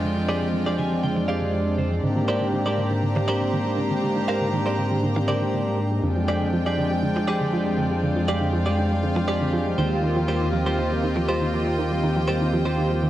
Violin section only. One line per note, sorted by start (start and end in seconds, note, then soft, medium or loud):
0.00 2.00 G#3 medium
0.00 2.00 F4 medium
0.00 4.00 D5 medium
0.00 2.00 G5 medium
2.03 6.00 G4 medium
2.03 5.99 C5 medium
2.03 6.00 A#5 medium
6.03 9.75 G#3 medium
6.03 13.10 F4 medium
6.03 9.74 D5 medium
6.03 8.01 G5 medium
8.04 9.77 F5 medium
9.79 13.10 C5 medium
9.79 13.10 D#5 medium
9.79 13.10 G5 medium